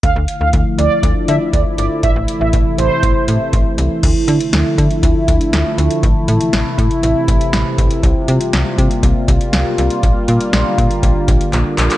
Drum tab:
CC |----------------|----------------|x---------------|----------------|
HH |x-x-x-x-x-x-x-x-|x-x-x-x-x-x-x-x-|x-xxx-xxx-xxx-xx|x-xxx-xxx-xxx-xx|
CP |----------------|----------------|----------------|----------------|
SD |----------------|----------------|----o-------o---|----o-------o---|
BD |o---o---o---o---|o---o---o---o---|o-----o-o-o-----|o-----o---o---o-|

CC |----------------|----------------|
HH |x-xxx-xxx-xxx-xx|x-xxx-xxx-xxx-xx|
CP |----------------|------------x-xx|
SD |----o-------o---|----o-----------|
BD |o-----o-o-o-----|o-----o-o-o-----|